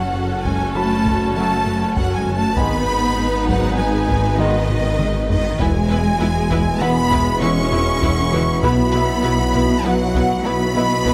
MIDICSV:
0, 0, Header, 1, 13, 480
1, 0, Start_track
1, 0, Tempo, 606061
1, 2035, Time_signature, 5, 2, 24, 8
1, 8822, End_track
2, 0, Start_track
2, 0, Title_t, "Soft synth lead"
2, 0, Program_c, 0, 80
2, 0, Note_on_c, 0, 78, 116
2, 360, Note_on_c, 0, 80, 126
2, 372, Note_off_c, 0, 78, 0
2, 590, Note_off_c, 0, 80, 0
2, 595, Note_on_c, 0, 81, 127
2, 1065, Note_off_c, 0, 81, 0
2, 1081, Note_on_c, 0, 81, 127
2, 1558, Note_on_c, 0, 78, 120
2, 1570, Note_off_c, 0, 81, 0
2, 1716, Note_on_c, 0, 80, 106
2, 1728, Note_off_c, 0, 78, 0
2, 1882, Note_on_c, 0, 81, 119
2, 1894, Note_off_c, 0, 80, 0
2, 2031, Note_off_c, 0, 81, 0
2, 2036, Note_on_c, 0, 83, 115
2, 2750, Note_on_c, 0, 78, 126
2, 2761, Note_off_c, 0, 83, 0
2, 2992, Note_on_c, 0, 80, 123
2, 3004, Note_off_c, 0, 78, 0
2, 3472, Note_on_c, 0, 75, 127
2, 3484, Note_off_c, 0, 80, 0
2, 4193, Note_off_c, 0, 75, 0
2, 4198, Note_on_c, 0, 75, 121
2, 4433, Note_on_c, 0, 80, 127
2, 4445, Note_off_c, 0, 75, 0
2, 5394, Note_off_c, 0, 80, 0
2, 5398, Note_on_c, 0, 83, 127
2, 5866, Note_off_c, 0, 83, 0
2, 5875, Note_on_c, 0, 85, 127
2, 6816, Note_off_c, 0, 85, 0
2, 6846, Note_on_c, 0, 83, 127
2, 7781, Note_off_c, 0, 83, 0
2, 7800, Note_on_c, 0, 78, 127
2, 8276, Note_on_c, 0, 83, 127
2, 8287, Note_off_c, 0, 78, 0
2, 8822, Note_off_c, 0, 83, 0
2, 8822, End_track
3, 0, Start_track
3, 0, Title_t, "Violin section"
3, 0, Program_c, 1, 48
3, 0, Note_on_c, 1, 78, 101
3, 335, Note_off_c, 1, 78, 0
3, 350, Note_on_c, 1, 80, 103
3, 592, Note_off_c, 1, 80, 0
3, 592, Note_on_c, 1, 81, 109
3, 1053, Note_off_c, 1, 81, 0
3, 1062, Note_on_c, 1, 81, 114
3, 1539, Note_off_c, 1, 81, 0
3, 1548, Note_on_c, 1, 78, 116
3, 1708, Note_off_c, 1, 78, 0
3, 1713, Note_on_c, 1, 80, 104
3, 1866, Note_on_c, 1, 81, 109
3, 1874, Note_off_c, 1, 80, 0
3, 2027, Note_off_c, 1, 81, 0
3, 2030, Note_on_c, 1, 83, 124
3, 2752, Note_off_c, 1, 83, 0
3, 2757, Note_on_c, 1, 78, 118
3, 2986, Note_on_c, 1, 80, 101
3, 2991, Note_off_c, 1, 78, 0
3, 3461, Note_off_c, 1, 80, 0
3, 3470, Note_on_c, 1, 75, 110
3, 4186, Note_off_c, 1, 75, 0
3, 4196, Note_on_c, 1, 75, 111
3, 4430, Note_off_c, 1, 75, 0
3, 4440, Note_on_c, 1, 80, 112
3, 5397, Note_off_c, 1, 80, 0
3, 5402, Note_on_c, 1, 83, 127
3, 5878, Note_off_c, 1, 83, 0
3, 5881, Note_on_c, 1, 85, 126
3, 6819, Note_off_c, 1, 85, 0
3, 6839, Note_on_c, 1, 83, 127
3, 7778, Note_off_c, 1, 83, 0
3, 7801, Note_on_c, 1, 78, 126
3, 8278, Note_off_c, 1, 78, 0
3, 8281, Note_on_c, 1, 83, 127
3, 8822, Note_off_c, 1, 83, 0
3, 8822, End_track
4, 0, Start_track
4, 0, Title_t, "Grand piano"
4, 0, Program_c, 2, 0
4, 0, Control_c, 2, 64, 127
4, 0, Note_on_c, 2, 87, 65
4, 562, Note_off_c, 2, 87, 0
4, 598, Note_on_c, 2, 83, 61
4, 2004, Note_off_c, 2, 83, 0
4, 2040, Note_on_c, 2, 80, 70
4, 2051, Control_c, 2, 64, 0
4, 2182, Control_c, 2, 64, 127
4, 3445, Note_off_c, 2, 80, 0
4, 4451, Control_c, 2, 64, 0
4, 4587, Control_c, 2, 64, 127
4, 5397, Note_on_c, 2, 78, 90
4, 6804, Note_off_c, 2, 78, 0
4, 6848, Control_c, 2, 64, 0
4, 6997, Control_c, 2, 64, 127
4, 7089, Note_on_c, 2, 76, 75
4, 8490, Note_off_c, 2, 76, 0
4, 8517, Note_on_c, 2, 75, 65
4, 8822, Note_off_c, 2, 75, 0
4, 8822, End_track
5, 0, Start_track
5, 0, Title_t, "Violin section"
5, 0, Program_c, 3, 48
5, 0, Note_on_c, 3, 69, 82
5, 2007, Note_off_c, 3, 69, 0
5, 2037, Note_on_c, 3, 71, 95
5, 4404, Note_off_c, 3, 71, 0
5, 4428, Note_on_c, 3, 71, 96
5, 4491, Note_off_c, 3, 71, 0
5, 4667, Note_on_c, 3, 71, 96
5, 4730, Note_off_c, 3, 71, 0
5, 4912, Note_on_c, 3, 71, 89
5, 4975, Note_off_c, 3, 71, 0
5, 5154, Note_on_c, 3, 71, 90
5, 5217, Note_off_c, 3, 71, 0
5, 5399, Note_on_c, 3, 71, 90
5, 5462, Note_off_c, 3, 71, 0
5, 5632, Note_on_c, 3, 71, 96
5, 5695, Note_off_c, 3, 71, 0
5, 5868, Note_on_c, 3, 71, 96
5, 5931, Note_off_c, 3, 71, 0
5, 6114, Note_on_c, 3, 71, 73
5, 6177, Note_off_c, 3, 71, 0
5, 6351, Note_on_c, 3, 71, 90
5, 6414, Note_off_c, 3, 71, 0
5, 6593, Note_on_c, 3, 71, 82
5, 6657, Note_off_c, 3, 71, 0
5, 6837, Note_on_c, 3, 71, 83
5, 6900, Note_off_c, 3, 71, 0
5, 7066, Note_on_c, 3, 71, 101
5, 7129, Note_off_c, 3, 71, 0
5, 7313, Note_on_c, 3, 71, 85
5, 7376, Note_off_c, 3, 71, 0
5, 7557, Note_on_c, 3, 71, 82
5, 7620, Note_off_c, 3, 71, 0
5, 7804, Note_on_c, 3, 71, 86
5, 7867, Note_off_c, 3, 71, 0
5, 8047, Note_on_c, 3, 71, 86
5, 8110, Note_off_c, 3, 71, 0
5, 8277, Note_on_c, 3, 71, 90
5, 8341, Note_off_c, 3, 71, 0
5, 8524, Note_on_c, 3, 71, 75
5, 8587, Note_off_c, 3, 71, 0
5, 8772, Note_on_c, 3, 71, 85
5, 8822, Note_off_c, 3, 71, 0
5, 8822, End_track
6, 0, Start_track
6, 0, Title_t, "Viola section"
6, 0, Program_c, 4, 48
6, 0, Note_on_c, 4, 61, 82
6, 0, Note_on_c, 4, 66, 83
6, 2034, Note_off_c, 4, 66, 0
6, 2037, Note_off_c, 4, 61, 0
6, 2042, Note_on_c, 4, 59, 94
6, 2045, Note_on_c, 4, 63, 100
6, 4407, Note_off_c, 4, 59, 0
6, 4434, Note_on_c, 4, 59, 97
6, 4436, Note_on_c, 4, 64, 96
6, 4439, Note_off_c, 4, 63, 0
6, 4497, Note_off_c, 4, 59, 0
6, 4500, Note_off_c, 4, 64, 0
6, 4673, Note_on_c, 4, 64, 78
6, 4675, Note_on_c, 4, 59, 82
6, 4737, Note_off_c, 4, 64, 0
6, 4739, Note_off_c, 4, 59, 0
6, 4913, Note_on_c, 4, 59, 95
6, 4913, Note_on_c, 4, 64, 92
6, 4976, Note_off_c, 4, 59, 0
6, 4976, Note_off_c, 4, 64, 0
6, 5150, Note_on_c, 4, 59, 91
6, 5153, Note_on_c, 4, 64, 95
6, 5213, Note_off_c, 4, 59, 0
6, 5217, Note_off_c, 4, 64, 0
6, 5389, Note_on_c, 4, 59, 84
6, 5391, Note_on_c, 4, 64, 94
6, 5452, Note_off_c, 4, 59, 0
6, 5454, Note_off_c, 4, 64, 0
6, 5635, Note_on_c, 4, 59, 87
6, 5635, Note_on_c, 4, 64, 85
6, 5698, Note_off_c, 4, 64, 0
6, 5699, Note_off_c, 4, 59, 0
6, 5874, Note_on_c, 4, 59, 85
6, 5878, Note_on_c, 4, 64, 91
6, 5938, Note_off_c, 4, 59, 0
6, 5942, Note_off_c, 4, 64, 0
6, 6116, Note_on_c, 4, 59, 84
6, 6117, Note_on_c, 4, 64, 84
6, 6179, Note_off_c, 4, 59, 0
6, 6181, Note_off_c, 4, 64, 0
6, 6359, Note_on_c, 4, 64, 97
6, 6362, Note_on_c, 4, 59, 80
6, 6422, Note_off_c, 4, 64, 0
6, 6425, Note_off_c, 4, 59, 0
6, 6599, Note_on_c, 4, 64, 92
6, 6601, Note_on_c, 4, 59, 88
6, 6662, Note_off_c, 4, 64, 0
6, 6664, Note_off_c, 4, 59, 0
6, 6841, Note_on_c, 4, 59, 103
6, 6841, Note_on_c, 4, 64, 93
6, 6904, Note_off_c, 4, 59, 0
6, 6904, Note_off_c, 4, 64, 0
6, 7078, Note_on_c, 4, 59, 80
6, 7078, Note_on_c, 4, 64, 81
6, 7141, Note_off_c, 4, 59, 0
6, 7141, Note_off_c, 4, 64, 0
6, 7310, Note_on_c, 4, 59, 86
6, 7311, Note_on_c, 4, 64, 89
6, 7374, Note_off_c, 4, 59, 0
6, 7374, Note_off_c, 4, 64, 0
6, 7558, Note_on_c, 4, 59, 77
6, 7560, Note_on_c, 4, 64, 84
6, 7621, Note_off_c, 4, 59, 0
6, 7623, Note_off_c, 4, 64, 0
6, 7792, Note_on_c, 4, 59, 90
6, 7794, Note_on_c, 4, 64, 87
6, 7855, Note_off_c, 4, 59, 0
6, 7858, Note_off_c, 4, 64, 0
6, 8039, Note_on_c, 4, 59, 80
6, 8039, Note_on_c, 4, 64, 73
6, 8102, Note_off_c, 4, 59, 0
6, 8102, Note_off_c, 4, 64, 0
6, 8279, Note_on_c, 4, 59, 79
6, 8280, Note_on_c, 4, 64, 81
6, 8342, Note_off_c, 4, 59, 0
6, 8343, Note_off_c, 4, 64, 0
6, 8522, Note_on_c, 4, 64, 83
6, 8524, Note_on_c, 4, 59, 78
6, 8586, Note_off_c, 4, 64, 0
6, 8587, Note_off_c, 4, 59, 0
6, 8753, Note_on_c, 4, 59, 83
6, 8753, Note_on_c, 4, 64, 76
6, 8817, Note_off_c, 4, 59, 0
6, 8817, Note_off_c, 4, 64, 0
6, 8822, End_track
7, 0, Start_track
7, 0, Title_t, "French horn section"
7, 0, Program_c, 5, 60
7, 1077, Note_on_c, 5, 57, 90
7, 1079, Note_on_c, 5, 66, 84
7, 1243, Note_off_c, 5, 57, 0
7, 1245, Note_off_c, 5, 66, 0
7, 2034, Note_on_c, 5, 63, 85
7, 2037, Note_on_c, 5, 59, 86
7, 2202, Note_off_c, 5, 63, 0
7, 2203, Note_off_c, 5, 59, 0
7, 3484, Note_on_c, 5, 59, 100
7, 3486, Note_on_c, 5, 63, 101
7, 3648, Note_off_c, 5, 59, 0
7, 3649, Note_off_c, 5, 63, 0
7, 4441, Note_on_c, 5, 64, 97
7, 4444, Note_on_c, 5, 59, 97
7, 8822, Note_off_c, 5, 59, 0
7, 8822, Note_off_c, 5, 64, 0
7, 8822, End_track
8, 0, Start_track
8, 0, Title_t, "Cello section"
8, 0, Program_c, 6, 48
8, 0, Note_on_c, 6, 54, 95
8, 340, Note_off_c, 6, 54, 0
8, 358, Note_on_c, 6, 56, 91
8, 591, Note_off_c, 6, 56, 0
8, 597, Note_on_c, 6, 57, 119
8, 1066, Note_off_c, 6, 57, 0
8, 1077, Note_on_c, 6, 57, 104
8, 1546, Note_off_c, 6, 57, 0
8, 1557, Note_on_c, 6, 54, 104
8, 1716, Note_off_c, 6, 54, 0
8, 1717, Note_on_c, 6, 56, 101
8, 1871, Note_on_c, 6, 57, 106
8, 1876, Note_off_c, 6, 56, 0
8, 2029, Note_off_c, 6, 57, 0
8, 2035, Note_on_c, 6, 59, 111
8, 2740, Note_off_c, 6, 59, 0
8, 2758, Note_on_c, 6, 54, 107
8, 2991, Note_off_c, 6, 54, 0
8, 3005, Note_on_c, 6, 56, 110
8, 3476, Note_on_c, 6, 51, 112
8, 3479, Note_off_c, 6, 56, 0
8, 4191, Note_off_c, 6, 51, 0
8, 4200, Note_on_c, 6, 51, 111
8, 4433, Note_off_c, 6, 51, 0
8, 4443, Note_on_c, 6, 56, 126
8, 5399, Note_off_c, 6, 56, 0
8, 5399, Note_on_c, 6, 59, 127
8, 5867, Note_off_c, 6, 59, 0
8, 5875, Note_on_c, 6, 61, 113
8, 6833, Note_on_c, 6, 59, 127
8, 6835, Note_off_c, 6, 61, 0
8, 7775, Note_off_c, 6, 59, 0
8, 7802, Note_on_c, 6, 54, 117
8, 8269, Note_off_c, 6, 54, 0
8, 8282, Note_on_c, 6, 59, 112
8, 8822, Note_off_c, 6, 59, 0
8, 8822, End_track
9, 0, Start_track
9, 0, Title_t, "Trombone section"
9, 0, Program_c, 7, 61
9, 1079, Note_on_c, 7, 54, 91
9, 1080, Note_on_c, 7, 49, 84
9, 1245, Note_off_c, 7, 54, 0
9, 1246, Note_off_c, 7, 49, 0
9, 2044, Note_on_c, 7, 56, 84
9, 2048, Note_on_c, 7, 51, 90
9, 2208, Note_off_c, 7, 56, 0
9, 2210, Note_off_c, 7, 51, 0
9, 3468, Note_on_c, 7, 56, 92
9, 3471, Note_on_c, 7, 51, 99
9, 3638, Note_off_c, 7, 56, 0
9, 3639, Note_off_c, 7, 51, 0
9, 4431, Note_on_c, 7, 47, 104
9, 4438, Note_on_c, 7, 56, 104
9, 6804, Note_off_c, 7, 56, 0
9, 6829, Note_on_c, 7, 54, 100
9, 8822, Note_off_c, 7, 47, 0
9, 8822, Note_off_c, 7, 54, 0
9, 8822, End_track
10, 0, Start_track
10, 0, Title_t, "Analog synth bass"
10, 0, Program_c, 8, 38
10, 112, Note_on_c, 8, 42, 73
10, 257, Note_off_c, 8, 42, 0
10, 354, Note_on_c, 8, 42, 101
10, 498, Note_off_c, 8, 42, 0
10, 595, Note_on_c, 8, 54, 77
10, 739, Note_off_c, 8, 54, 0
10, 831, Note_on_c, 8, 42, 103
10, 976, Note_off_c, 8, 42, 0
10, 1078, Note_on_c, 8, 54, 80
10, 1221, Note_off_c, 8, 54, 0
10, 1314, Note_on_c, 8, 42, 83
10, 1458, Note_off_c, 8, 42, 0
10, 1553, Note_on_c, 8, 42, 118
10, 1698, Note_off_c, 8, 42, 0
10, 1796, Note_on_c, 8, 42, 75
10, 1939, Note_off_c, 8, 42, 0
10, 2032, Note_on_c, 8, 44, 107
10, 2176, Note_off_c, 8, 44, 0
10, 2275, Note_on_c, 8, 44, 78
10, 2419, Note_off_c, 8, 44, 0
10, 2518, Note_on_c, 8, 44, 75
10, 2661, Note_off_c, 8, 44, 0
10, 2762, Note_on_c, 8, 44, 109
10, 2904, Note_off_c, 8, 44, 0
10, 2996, Note_on_c, 8, 56, 74
10, 3140, Note_off_c, 8, 56, 0
10, 3237, Note_on_c, 8, 44, 118
10, 3380, Note_off_c, 8, 44, 0
10, 3471, Note_on_c, 8, 56, 80
10, 3616, Note_off_c, 8, 56, 0
10, 3716, Note_on_c, 8, 44, 79
10, 3859, Note_off_c, 8, 44, 0
10, 3951, Note_on_c, 8, 44, 108
10, 4096, Note_off_c, 8, 44, 0
10, 4191, Note_on_c, 8, 44, 76
10, 4336, Note_off_c, 8, 44, 0
10, 4432, Note_on_c, 8, 40, 105
10, 4577, Note_off_c, 8, 40, 0
10, 4672, Note_on_c, 8, 40, 76
10, 4817, Note_off_c, 8, 40, 0
10, 4911, Note_on_c, 8, 40, 76
10, 5056, Note_off_c, 8, 40, 0
10, 5150, Note_on_c, 8, 40, 114
10, 5295, Note_off_c, 8, 40, 0
10, 5391, Note_on_c, 8, 52, 74
10, 5536, Note_off_c, 8, 52, 0
10, 5631, Note_on_c, 8, 40, 122
10, 5776, Note_off_c, 8, 40, 0
10, 5872, Note_on_c, 8, 52, 82
10, 6017, Note_off_c, 8, 52, 0
10, 6114, Note_on_c, 8, 40, 89
10, 6258, Note_off_c, 8, 40, 0
10, 6355, Note_on_c, 8, 40, 121
10, 6499, Note_off_c, 8, 40, 0
10, 6593, Note_on_c, 8, 40, 83
10, 6738, Note_off_c, 8, 40, 0
10, 6832, Note_on_c, 8, 47, 127
10, 6976, Note_off_c, 8, 47, 0
10, 7077, Note_on_c, 8, 47, 81
10, 7220, Note_off_c, 8, 47, 0
10, 7318, Note_on_c, 8, 47, 73
10, 7461, Note_off_c, 8, 47, 0
10, 7558, Note_on_c, 8, 47, 118
10, 7701, Note_off_c, 8, 47, 0
10, 7796, Note_on_c, 8, 59, 76
10, 7940, Note_off_c, 8, 59, 0
10, 8039, Note_on_c, 8, 47, 115
10, 8182, Note_off_c, 8, 47, 0
10, 8270, Note_on_c, 8, 59, 84
10, 8415, Note_off_c, 8, 59, 0
10, 8513, Note_on_c, 8, 47, 85
10, 8658, Note_off_c, 8, 47, 0
10, 8755, Note_on_c, 8, 47, 119
10, 8822, Note_off_c, 8, 47, 0
10, 8822, End_track
11, 0, Start_track
11, 0, Title_t, "Detuned saw bass"
11, 0, Program_c, 10, 39
11, 0, Note_on_c, 10, 30, 78
11, 2032, Note_on_c, 10, 32, 86
11, 2044, Note_off_c, 10, 30, 0
11, 4428, Note_on_c, 10, 28, 78
11, 4440, Note_off_c, 10, 32, 0
11, 6832, Note_on_c, 10, 35, 85
11, 6844, Note_off_c, 10, 28, 0
11, 8822, Note_off_c, 10, 35, 0
11, 8822, End_track
12, 0, Start_track
12, 0, Title_t, "Double bass section"
12, 0, Program_c, 11, 48
12, 0, Note_on_c, 11, 30, 91
12, 2005, Note_off_c, 11, 30, 0
12, 2039, Note_on_c, 11, 32, 110
12, 4433, Note_on_c, 11, 28, 126
12, 4437, Note_off_c, 11, 32, 0
12, 4857, Note_off_c, 11, 28, 0
12, 4915, Note_on_c, 11, 28, 104
12, 5338, Note_off_c, 11, 28, 0
12, 5395, Note_on_c, 11, 28, 104
12, 5818, Note_off_c, 11, 28, 0
12, 5880, Note_on_c, 11, 28, 114
12, 6301, Note_off_c, 11, 28, 0
12, 6360, Note_on_c, 11, 28, 110
12, 6781, Note_off_c, 11, 28, 0
12, 6837, Note_on_c, 11, 35, 107
12, 7259, Note_off_c, 11, 35, 0
12, 7315, Note_on_c, 11, 35, 105
12, 7738, Note_off_c, 11, 35, 0
12, 7796, Note_on_c, 11, 35, 102
12, 8219, Note_off_c, 11, 35, 0
12, 8272, Note_on_c, 11, 35, 107
12, 8697, Note_off_c, 11, 35, 0
12, 8757, Note_on_c, 11, 35, 104
12, 8822, Note_off_c, 11, 35, 0
12, 8822, End_track
13, 0, Start_track
13, 0, Title_t, "Taiko and cinematic ensemble drums"
13, 354, Note_on_c, 9, 41, 93
13, 433, Note_off_c, 9, 41, 0
13, 836, Note_on_c, 9, 41, 98
13, 915, Note_off_c, 9, 41, 0
13, 1555, Note_on_c, 9, 41, 90
13, 1634, Note_off_c, 9, 41, 0
13, 1795, Note_on_c, 9, 47, 69
13, 1874, Note_off_c, 9, 47, 0
13, 2033, Note_on_c, 9, 41, 108
13, 2113, Note_off_c, 9, 41, 0
13, 2757, Note_on_c, 9, 41, 93
13, 2836, Note_off_c, 9, 41, 0
13, 3235, Note_on_c, 9, 41, 97
13, 3315, Note_off_c, 9, 41, 0
13, 3714, Note_on_c, 9, 45, 84
13, 3793, Note_off_c, 9, 45, 0
13, 3953, Note_on_c, 9, 47, 111
13, 4032, Note_off_c, 9, 47, 0
13, 4194, Note_on_c, 9, 43, 113
13, 4273, Note_off_c, 9, 43, 0
13, 4432, Note_on_c, 9, 41, 113
13, 4512, Note_off_c, 9, 41, 0
13, 5155, Note_on_c, 9, 41, 93
13, 5234, Note_off_c, 9, 41, 0
13, 5638, Note_on_c, 9, 41, 97
13, 5717, Note_off_c, 9, 41, 0
13, 6358, Note_on_c, 9, 41, 96
13, 6437, Note_off_c, 9, 41, 0
13, 6598, Note_on_c, 9, 47, 73
13, 6678, Note_off_c, 9, 47, 0
13, 6837, Note_on_c, 9, 41, 107
13, 6916, Note_off_c, 9, 41, 0
13, 7557, Note_on_c, 9, 41, 91
13, 7636, Note_off_c, 9, 41, 0
13, 8036, Note_on_c, 9, 41, 97
13, 8115, Note_off_c, 9, 41, 0
13, 8754, Note_on_c, 9, 41, 94
13, 8822, Note_off_c, 9, 41, 0
13, 8822, End_track
0, 0, End_of_file